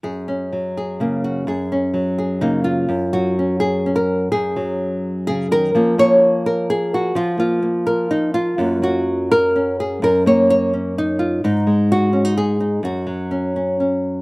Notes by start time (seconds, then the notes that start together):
0.03 F#2 G#4
0.28 C#4
0.53 F#3
0.77 G#4
1.00 C#3 A#3
1.24 F#4
1.47 F#2 G#4
1.72 C#4
1.94 F#3
2.18 G#4
2.41 C#3 A#3 D#4
2.64 F4
2.89 F#2
3.13 F#3 F#4
3.39 C#4
3.60 G#4
3.86 C#4
3.96 A#4
4.32 F#2 G#4
4.56 F#3
5.27 C#3 G#4
5.51 D#3 A#4
5.75 F3 A#3 C#4
5.98 A#3 C#5
6.46 A#4
6.70 G#4
6.94 F#4
7.15 F3 F4
7.38 A#3 F4
7.62 A#3
7.87 A#4
8.11 D#4
8.34 F4
8.58 F#2 F#3 A#3
8.82 F#3 F#4
9.31 A#4
9.56 C#4
9.80 G#4
10.02 F#2 A#4
10.26 A#3 C#5
10.50 C#5
10.74 C#4
10.98 D#4
11.19 F4
11.44 G#2 D#4
11.67 G#3
11.92 F#4
12.13 C#4
12.25 D#4
12.38 G#4
12.60 D#4
12.83 F#2 F#4
13.07 F#3
13.31 C#4
13.56 C#4
13.80 C#4